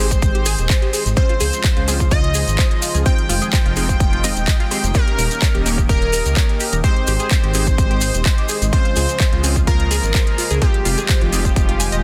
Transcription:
Already playing: G#1 D#3 G#3 G4 C5 D#5
0.00 G#3 C4 D#4 G4
0.11 C5, kick, closed hi-hat, maracas
0.22 G#1, kick, closed hi-hat, maracas
0.35 G4, closed hi-hat
0.46 G#4, open hi-hat, maracas
0.58 D#1, closed hi-hat, maracas
0.69 C5, kick, clap, closed hi-hat, maracas
0.82 G4, closed hi-hat
0.93 G#4, open hi-hat, maracas
1.06 G#1, closed hi-hat, maracas
1.17 C#3 F3 G#3 C4 C#4 F4 C5, kick, closed hi-hat, maracas
1.29 F4, closed hi-hat
1.40 C#2 G#4, open hi-hat, maracas
1.53 closed hi-hat, maracas
1.64 C5, kick, clap, closed hi-hat, maracas
1.77 C#2 F4, closed hi-hat
1.88 G#3 C4 C#4 F4 G#4, open hi-hat, maracas
2.00 F4, kick, closed hi-hat, maracas
2.11 C#2 F4 D#5, kick, closed hi-hat, maracas
2.24 closed hi-hat
2.34 G#4, open hi-hat, maracas
2.48 G#1, closed hi-hat, maracas
2.58 C5, kick, clap, closed hi-hat, maracas
2.71 closed hi-hat
2.82 F4, open hi-hat, maracas
2.94 C#2 G#4, closed hi-hat, maracas
3.06 D#3 G#3 C4 D#4 F4 C5 G5, kick, closed hi-hat, maracas
3.18 closed hi-hat
3.29 F1 F4, open hi-hat, maracas
3.42 G#4, closed hi-hat, maracas
3.53 C5, kick, clap, closed hi-hat, maracas
3.66 F1 F4, closed hi-hat
3.76 G#3 C4 D#4 F4 G#4, open hi-hat, maracas
3.89 C5, kick, closed hi-hat, maracas
4.00 F1, kick, closed hi-hat, maracas
4.13 F4, closed hi-hat
4.24 G#3 C4 D#4 F4 D#5, open hi-hat, maracas
4.37 D#1, closed hi-hat, maracas
4.47 D#5, kick, clap, closed hi-hat, maracas
4.60 F4, closed hi-hat
4.71 G#3 C4 D#4 G4 C6, open hi-hat, maracas
4.84 F1, closed hi-hat, maracas
4.94 D#3 A#3 C#4 D#4 G4 A#4, kick, closed hi-hat, maracas
5.07 G4, closed hi-hat
5.18 D#1 A#4, open hi-hat, maracas
5.31 closed hi-hat, maracas
5.42 C#5, kick, clap, closed hi-hat, maracas
5.54 D#1 G4, closed hi-hat
5.66 A#3 C#4 D#4 G4 A#4, open hi-hat, maracas
5.78 G4, kick, maracas
5.89 D#1 G4 A#4, kick, closed hi-hat, maracas
6.02 closed hi-hat
6.13 A#4, open hi-hat, maracas
6.25 C#2, closed hi-hat, maracas
6.37 C#5, kick, clap, closed hi-hat, maracas
6.49 closed hi-hat
6.60 G4, open hi-hat, maracas
6.73 D#1 A#4, closed hi-hat, maracas
6.84 D#3 G#3 C4 D#4 G4 C5, kick, closed hi-hat, maracas
6.96 closed hi-hat
7.07 G#1 G4, open hi-hat, maracas
7.19 G#4, closed hi-hat, maracas
7.31 C5, kick, clap, closed hi-hat, maracas
7.43 G#1 G4, closed hi-hat
7.54 G#3 C4 D#4 G4 G#4, open hi-hat, maracas
7.66 C5, kick, maracas
7.78 G#1, kick, closed hi-hat, maracas
7.91 G4, closed hi-hat
8.01 C5, open hi-hat, maracas
8.14 D#1, closed hi-hat, maracas
8.25 C5, kick, clap, closed hi-hat, maracas
8.38 G4, closed hi-hat
8.49 G#4, open hi-hat, maracas
8.62 G#1, closed hi-hat, maracas
8.73 C#3 F3 G#3 C4 C#4 F4 C5, kick, closed hi-hat, maracas
8.85 F4, closed hi-hat
8.96 C#2 G#4, open hi-hat, maracas
9.09 closed hi-hat, maracas
9.20 C5, kick, clap, closed hi-hat, maracas
9.32 C#2 F4, closed hi-hat
9.44 G#3 C4 C#4 F4 G#4, open hi-hat, maracas
9.56 F4, kick, closed hi-hat, maracas
9.67 C#2 F4 A#4, kick, closed hi-hat, maracas
9.80 closed hi-hat
9.91 G#4, open hi-hat, maracas
10.03 G#1, closed hi-hat, maracas
10.14 C5, kick, clap, closed hi-hat, maracas
10.27 closed hi-hat
10.38 F4, open hi-hat, maracas
10.51 C#2 G#4, closed hi-hat, maracas
10.62 D#3 F3 G#3 C4 D#4 F4 G4 C5, kick, closed hi-hat, maracas
10.74 closed hi-hat
10.85 F1 F4, open hi-hat, maracas
10.98 G#4, closed hi-hat, maracas
11.09 C5, kick, clap, closed hi-hat, maracas
11.21 F1 F4, closed hi-hat
11.32 G#3 C4 D#4 F4 G#4, open hi-hat, maracas
11.45 C5, kick, closed hi-hat, maracas
11.56 F1, kick, closed hi-hat, maracas
11.69 F4, closed hi-hat
11.80 G#5, open hi-hat, maracas
11.92 D#1 D#5, closed hi-hat, maracas

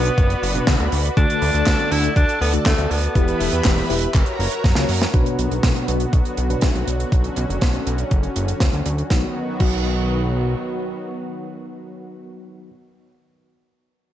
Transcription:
Already playing: B1 B2 B3 D4 F#4 B4 D5 B5
0.05 closed hi-hat
0.18 F#1, kick, closed hi-hat
0.30 closed hi-hat
0.43 F#1, open hi-hat
0.55 B2 B3 D4 F#4 B4, closed hi-hat
0.67 D2, kick, snare, clap, closed hi-hat
0.80 D2, closed hi-hat
0.92 D2, open hi-hat
1.05 closed hi-hat
1.17 D2 D3 A3 D4 F#4 A4 D5 A5, kick, closed hi-hat
1.30 closed hi-hat
1.42 D2, open hi-hat
1.54 D2, closed hi-hat
1.66 D2, kick, snare, clap, closed hi-hat
1.79 closed hi-hat
1.91 D2 D3 A3 D4 E4 F#4 A4, open hi-hat
2.04 closed hi-hat
2.16 D2 D4, kick, closed hi-hat
2.29 closed hi-hat
2.41 D2 B3, open hi-hat
2.53 D3 A3 D4 F#4 A4, closed hi-hat
2.66 D2 A3, kick, snare, clap, closed hi-hat
2.78 D2, closed hi-hat
2.91 D2 B3, open hi-hat
3.03 closed hi-hat
3.15 E1 E3 B3 E4 G4 B4 E5 B5, kick, closed hi-hat
3.28 closed hi-hat
3.40 E1, open hi-hat
3.53 E2, closed hi-hat
3.64 E1, kick, snare, clap, closed hi-hat
3.77 open hi-hat
3.90 E1 B3 E4 G4 B4, open hi-hat
4.02 closed hi-hat
4.14 F#1 F#4 A#4 C#5 A#5, kick, clap, closed hi-hat
4.26 closed hi-hat
4.39 F#1, open hi-hat
4.52 closed hi-hat
4.64 F#2, kick, snare, closed hi-hat
4.75 C#2 F#3 A#3 C#4 F#4, snare, closed hi-hat
4.89 F#2, open hi-hat
5.01 snare, closed hi-hat
5.14 B1 B2 D3 F#3 B3 D4 F#4 B4, kick, closed hi-hat
5.26 closed hi-hat
5.39 B1, closed hi-hat
5.51 B1, closed hi-hat
5.63 B1, kick, snare, closed hi-hat
5.76 closed hi-hat
5.88 B1 B2 B3 D4 F#4 B4, closed hi-hat
6.00 closed hi-hat
6.13 B1, kick, closed hi-hat
6.25 closed hi-hat
6.37 B1, closed hi-hat
6.50 B2 B3 D4 F#4 B4, closed hi-hat
6.61 B1, kick, snare, closed hi-hat
6.75 B1, closed hi-hat
6.87 B1, closed hi-hat
7.00 closed hi-hat
7.12 B1 C#4, kick, closed hi-hat
7.24 closed hi-hat
7.36 B1, closed hi-hat
7.49 F#1, closed hi-hat
7.61 B1, kick, snare, closed hi-hat
7.74 closed hi-hat
7.87 B1, closed hi-hat
7.98 closed hi-hat
8.11 F#1, kick, closed hi-hat
8.23 closed hi-hat
8.36 F#1, closed hi-hat
8.48 closed hi-hat
8.60 D2, kick, snare, closed hi-hat
8.73 D2, closed hi-hat
8.86 D2, closed hi-hat
8.98 closed hi-hat
9.10 B1 D#3 F#3 B3 D#4 F#4, kick, snare
9.60 B1 F#3 B3 D#4 F#4, kick, crash

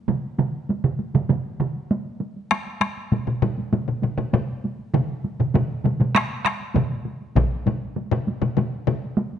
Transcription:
0.08 taiko mid, taiko high
0.23 taiko high
0.38 taiko mid, taiko high
0.54 taiko high
0.69 taiko high
0.84 taiko mid
0.99 taiko high
1.14 taiko mid, taiko high
1.29 taiko mid, taiko high
1.45 taiko high
1.60 taiko mid, taiko high
1.76 taiko high
1.91 taiko high
2.06 taiko high
2.21 taiko high
2.36 taiko high
2.51 taiko rim, taiko high
2.67 taiko high
2.81 taiko rim, taiko high
2.97 taiko high
3.12 taiko low-mid, taiko high
3.27 taiko low-mid, taiko high
3.42 taiko low-mid, taiko high
3.58 taiko high
3.73 taiko low-mid, taiko high
3.88 taiko low-mid, taiko high
4.03 taiko low-mid, taiko high
4.18 taiko low-mid, taiko high
4.33 taiko low-mid, taiko high
4.48 taiko high
4.64 taiko high
4.79 taiko high
4.94 taiko low-mid, taiko mid, taiko high
5.10 taiko high
5.24 taiko high
5.40 taiko low-mid, taiko mid, taiko high
5.54 taiko low-mid, taiko mid, taiko high
5.69 taiko high
5.85 taiko low-mid, taiko mid, taiko high
6.00 taiko low-mid, taiko mid, taiko high
6.15 taiko rim, taiko high
6.30 taiko high
6.45 taiko rim, taiko high
6.60 taiko high
6.74 taiko low-mid, taiko mid, taiko high
6.90 taiko high
7.05 taiko high
7.21 taiko high
7.35 taiko, taiko low-mid, taiko high
7.51 taiko high
7.66 taiko low-mid, taiko high
7.82 taiko high
7.96 taiko high
8.11 taiko low-mid
8.27 taiko high
8.42 taiko low-mid, taiko high
8.57 taiko low-mid, taiko high
8.72 taiko high
8.87 taiko low-mid, taiko high
9.02 taiko high
9.17 taiko high
9.33 taiko high

